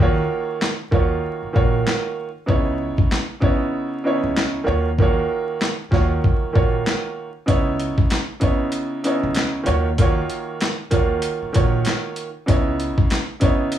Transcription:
0.00 0.20 D#2 loud
0.00 0.72 D#3 loud
0.00 0.73 A#3 loud
0.00 0.73 F4 medium
0.00 0.73 F#4 medium
0.00 0.74 C#5 loud
0.62 snare loud
0.62 clap medium
0.91 1.19 D#2 medium
0.91 1.50 D#3 loud
0.91 1.50 A#3 medium
0.91 1.51 F4 medium
0.91 1.51 F#4 medium
0.91 1.51 C#5 medium
0.91 kick medium
1.43 muted upright bass stroke soft
1.53 1.82 A#1 medium
1.53 2.27 D#3 medium
1.53 2.28 A#3 medium
1.53 2.28 F4 medium
1.53 2.28 F#4 medium
1.53 2.29 C#5 loud
1.53 kick loud
1.87 snare loud
1.87 clap medium
2.46 2.90 C#2 loud
2.46 3.21 C#3 medium
2.46 3.21 B3 medium
2.46 3.21 D#4 medium
2.46 3.22 E4 medium
2.46 3.22 C#5 loud
2.46 kick loud
2.98 kick loud
3.12 snare loud
3.12 clap medium
3.40 4.00 C#3 medium
3.40 4.00 B3 loud
3.40 4.00 D#4 medium
3.40 4.01 E4 medium
3.40 4.01 C#5 loud
3.40 kick medium
4.04 4.67 C#3 medium
4.04 4.67 B3 medium
4.04 4.68 D#4 medium
4.04 4.68 E4 medium
4.04 4.65 C#5 loud
4.24 4.34 C#2 medium
4.37 snare loud
4.37 clap medium
4.64 4.87 D#3 loud
4.64 4.88 A#3 medium
4.64 4.88 F4 medium
4.64 4.88 F#4 medium
4.64 4.89 C#5 loud
4.68 5.20 D#2 loud
4.98 5.72 D#3 loud
4.98 5.73 A#3 medium
4.98 5.73 F4 medium
4.98 5.73 F#4 medium
4.98 5.74 C#5 loud
4.98 kick loud
5.62 snare loud
5.62 clap medium
5.91 6.18 D#2 medium
5.91 6.50 D#3 loud
5.91 6.50 A#3 medium
5.91 6.51 F4 medium
5.91 6.51 F#4 medium
5.91 6.51 C#5 medium
5.91 kick medium
5.91 snare soft
6.24 kick medium
6.42 muted upright bass stroke soft
6.53 6.82 A#1 medium
6.53 7.27 D#3 medium
6.53 7.27 A#3 medium
6.53 7.28 F4 medium
6.53 7.28 F#4 medium
6.53 7.29 C#5 loud
6.53 kick loud
6.87 snare loud
6.87 clap medium
7.46 7.90 C#2 loud
7.46 8.21 C#3 medium
7.46 8.21 B3 medium
7.46 8.21 D#4 medium
7.46 8.22 E4 loud
7.46 8.22 C#5 loud
7.46 kick loud
7.46 closed hi-hat medium
7.80 closed hi-hat medium
7.98 kick loud
8.10 snare loud
8.10 clap medium
8.10 closed hi-hat medium
8.40 8.99 C#3 medium
8.40 9.00 B3 medium
8.40 9.00 D#4 medium
8.40 9.00 E4 medium
8.40 9.01 C#5 loud
8.40 kick medium
8.40 closed hi-hat medium
8.72 closed hi-hat loud
9.04 9.67 C#3 medium
9.04 9.67 B3 medium
9.04 9.67 D#4 medium
9.04 9.68 E4 medium
9.04 9.65 C#5 medium
9.04 closed hi-hat medium
9.23 9.34 C#2 medium
9.35 snare loud
9.35 clap medium
9.35 closed hi-hat medium
9.63 9.87 D#3 medium
9.63 9.88 A#3 medium
9.63 9.88 F4 medium
9.63 9.88 F#4 medium
9.63 9.89 C#5 loud
9.63 closed hi-hat medium
9.68 10.20 D#2 loud
9.98 10.72 D#3 loud
9.98 10.72 A#3 medium
9.98 10.73 F4 medium
9.98 10.73 F#4 medium
9.98 10.73 C#5 loud
9.98 kick loud
9.98 closed hi-hat medium
10.29 closed hi-hat medium
10.61 snare loud
10.61 clap medium
10.61 closed hi-hat medium
10.91 11.19 D#2 medium
10.91 11.50 D#3 loud
10.91 11.50 A#3 medium
10.91 11.50 F4 medium
10.91 11.51 F#4 medium
10.91 11.51 C#5 medium
10.91 kick medium
10.91 closed hi-hat medium
11.22 closed hi-hat loud
11.42 muted upright bass stroke soft
11.53 11.82 A#1 medium
11.53 12.27 D#3 loud
11.53 12.27 A#3 medium
11.53 12.28 F4 medium
11.53 12.28 F#4 medium
11.53 12.28 C#5 loud
11.53 kick loud
11.53 closed hi-hat medium
11.85 snare loud
11.85 clap medium
11.85 closed hi-hat medium
12.16 closed hi-hat medium
12.46 12.90 C#2 loud
12.46 13.21 C#3 medium
12.46 13.21 B3 medium
12.46 13.21 D#4 medium
12.46 13.22 E4 loud
12.46 13.22 C#5 loud
12.46 kick loud
12.46 closed hi-hat medium
12.80 closed hi-hat medium
12.98 kick loud
13.10 snare loud
13.10 clap medium
13.10 closed hi-hat medium
13.40 13.79 C#3 medium
13.40 13.79 B3 medium
13.40 13.79 D#4 medium
13.40 13.79 E4 medium
13.40 13.79 C#5 loud
13.40 kick medium
13.40 closed hi-hat medium
13.72 closed hi-hat loud

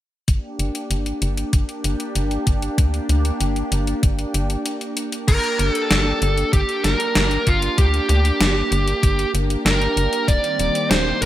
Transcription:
0.28 0.39 G1 medium
0.28 5.24 A#3 medium
0.28 5.24 D4 medium
0.28 5.24 G4 medium
0.28 kick loud
0.28 closed hi-hat medium
0.59 0.70 G1 medium
0.59 closed hi-hat medium
0.75 closed hi-hat medium
0.90 1.12 G1 medium
0.90 closed hi-hat medium
1.06 closed hi-hat soft
1.22 1.44 G1 loud
1.22 closed hi-hat medium
1.37 closed hi-hat medium
1.53 1.64 G1 loud
1.53 kick loud
1.53 closed hi-hat medium
1.69 closed hi-hat soft
1.84 1.95 G1 medium
1.84 closed hi-hat medium
2.00 closed hi-hat medium
2.15 2.37 G1 medium
2.15 closed hi-hat medium
2.31 closed hi-hat soft
2.47 2.69 G1 medium
2.47 kick loud
2.47 closed hi-hat medium
2.62 closed hi-hat medium
2.78 3.00 D2 medium
2.78 kick loud
2.78 closed hi-hat medium
2.94 closed hi-hat soft
3.09 3.31 D2 medium
3.09 closed hi-hat medium
3.25 closed hi-hat medium
3.40 3.62 G1 medium
3.40 closed hi-hat medium
3.56 closed hi-hat soft
3.72 3.94 G1 loud
3.72 closed hi-hat medium
3.87 closed hi-hat medium
4.03 4.25 G1 medium
4.03 kick loud
4.03 closed hi-hat medium
4.19 closed hi-hat soft
4.34 4.56 G1 medium
4.34 closed hi-hat medium
4.50 closed hi-hat medium
4.66 closed hi-hat medium
4.81 closed hi-hat soft
4.97 closed hi-hat medium
5.12 closed hi-hat medium
5.28 5.39 G1 medium
5.28 11.26 A#3 medium
5.28 10.24 D4 medium
5.28 11.26 G4 medium
5.28 5.59 A#4 loud
5.28 kick loud
5.28 closed hi-hat medium
5.28 crash medium
5.44 closed hi-hat soft
5.59 5.70 G1 medium
5.59 5.71 A#4 loud
5.59 closed hi-hat medium
5.71 6.53 A4 loud
5.75 closed hi-hat medium
5.91 6.13 G1 medium
5.91 snare loud
5.91 closed hi-hat medium
6.22 6.44 G1 loud
6.22 closed hi-hat medium
6.38 closed hi-hat medium
6.53 6.64 G1 loud
6.53 6.82 G4 loud
6.53 kick loud
6.53 closed hi-hat medium
6.69 closed hi-hat soft
6.84 6.95 G1 medium
6.84 7.49 A#4 loud
6.84 snare medium
6.84 closed hi-hat medium
7.00 closed hi-hat medium
7.15 7.38 G1 medium
7.15 snare loud
7.15 closed hi-hat medium
7.31 closed hi-hat soft
7.47 7.69 G1 loud
7.47 7.76 F4 medium
7.47 kick loud
7.47 closed hi-hat medium
7.62 closed hi-hat medium
7.78 8.00 D2 medium
7.78 8.08 G4 loud
7.78 kick loud
7.78 closed hi-hat medium
7.94 closed hi-hat soft
8.09 8.31 D2 medium
8.09 9.30 G4 medium
8.09 closed hi-hat medium
8.25 closed hi-hat medium
8.40 8.62 G1 medium
8.40 snare loud
8.40 closed hi-hat medium
8.72 8.94 G1 loud
8.72 closed hi-hat medium
8.88 closed hi-hat medium
9.03 9.25 G1 medium
9.03 kick loud
9.03 closed hi-hat medium
9.19 closed hi-hat soft
9.34 9.56 G1 medium
9.34 closed hi-hat medium
9.50 closed hi-hat medium
9.65 9.87 G1 loud
9.65 10.30 A#4 loud
9.65 snare loud
9.65 closed hi-hat medium
9.82 closed hi-hat soft
9.97 10.08 G1 medium
9.97 closed hi-hat medium
10.13 closed hi-hat medium
10.28 10.39 D#1 loud
10.28 11.26 D#3 medium
10.28 11.26 G3 medium
10.28 11.26 C4 medium
10.28 10.90 D5 loud
10.28 kick loud
10.28 closed hi-hat medium
10.44 closed hi-hat soft
10.59 10.70 D#1 medium
10.59 closed hi-hat medium
10.75 closed hi-hat medium
10.91 11.12 D#1 medium
10.91 11.23 C5 medium
10.91 snare loud
10.91 closed hi-hat medium
11.22 11.26 D#1 loud
11.22 11.26 A#4 loud
11.22 closed hi-hat medium

